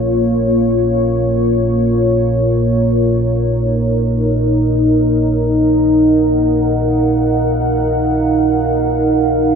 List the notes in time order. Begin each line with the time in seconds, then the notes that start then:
Already playing: A#1 A#2 A#3 F4 A#4 C#5
3.37 D#4
5.36 F#5
6.00 F5